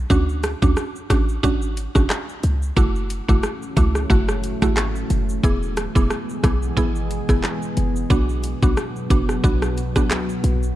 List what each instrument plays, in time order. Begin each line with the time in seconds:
0.10 808-style bass D2, synth pluck C#4 D4 F#4, kick, high woodblock, shaker
0.29 shaker
0.43 cross-stick, closed hi-hat, cabasa, shaker
0.62 808-style bass D2, synth pluck C#4 D4 F#4, kick, high woodblock, shaker
0.77 cross-stick, shaker
0.96 shaker
1.10 808-style bass A1, synth pluck C#4 D4 F#4, kick, cross-stick, closed hi-hat, cabasa, high woodblock, shaker
1.29 shaker
1.43 808-style bass G#1, synth pluck C#4 D4 F#4, kick, shaker
1.62 shaker
1.77 closed hi-hat, cabasa, shaker
1.95 808-style bass F#1, synth pluck C#4 D4 F#4, kick, cross-stick, shaker
2.10 cross-stick, clap, shaker
2.29 shaker
2.43 808-style bass C#2, closed hi-hat, cabasa, shaker
2.62 shaker
2.77 808-style bass F#1, ambient pad E3 A3 C#4 F#4, synth pluck A3 E4 F#4, kick, high woodblock, shaker
2.96 shaker
3.10 closed hi-hat, cabasa, shaker
3.28 808-style bass F#1, synth pluck A3 E4 F#4, kick, high woodblock, shaker
3.43 cross-stick, shaker
3.62 shaker
3.77 808-style bass C#2, synth pluck A3 E4 F#4, kick, closed hi-hat, cabasa, high woodblock, shaker
3.95 cross-stick, shaker
4.10 808-style bass F#1, synth pluck A3 E4 F#4, kick, shaker
4.29 cross-stick, shaker
4.44 closed hi-hat, cabasa, shaker
4.62 808-style bass G#1, synth pluck A3 E4 F#4, kick, cross-stick, shaker
4.77 cross-stick, clap, shaker
4.96 shaker
5.10 808-style bass F#1, closed hi-hat, cabasa, shaker
5.29 shaker
5.43 808-style bass E1, ambient pad G#3 B3 G#4, synth pluck B3 E4 G#4, kick, high woodblock, shaker
5.63 shaker
5.76 cross-stick, closed hi-hat, cabasa, shaker
5.95 808-style bass E1, synth pluck B3 E4 G#4, kick, high woodblock, shaker
6.10 cross-stick, shaker
6.29 shaker
6.43 808-style bass B1, synth pluck B3 E4 G#4, kick, cross-stick, closed hi-hat, cabasa, high woodblock, shaker
6.63 shaker
6.77 808-style bass G#1, synth pluck B3 E4 G#4, kick, shaker
6.96 shaker
7.11 closed hi-hat, cabasa, shaker
7.29 808-style bass F#1, synth pluck B3 E4 G#4, kick, cross-stick, shaker
7.43 cross-stick, clap, shaker
7.62 shaker
7.77 808-style bass F#1, closed hi-hat, cabasa, shaker
7.96 shaker
8.10 808-style bass B1, ambient pad B2 F#3 B3 F#4, synth pluck B3 D4 F#4, kick, high woodblock, shaker
8.29 shaker
8.43 closed hi-hat, cabasa, shaker
8.62 808-style bass B1, synth pluck B3 D4 F#4, kick, high woodblock, shaker
8.77 cross-stick, shaker
8.96 shaker
9.10 808-style bass F#1, synth pluck B3 D4 F#4, kick, closed hi-hat, cabasa, high woodblock, shaker
9.29 cross-stick, shaker
9.44 808-style bass B1, synth pluck B3 D4 F#4, kick, shaker
9.62 cross-stick, shaker
9.77 closed hi-hat, cabasa, shaker
9.96 808-style bass C#2, synth pluck B3 D4 F#4, kick, cross-stick, shaker
10.11 cross-stick, clap, shaker
10.29 shaker
10.44 808-style bass B1, closed hi-hat, cabasa, shaker
10.63 shaker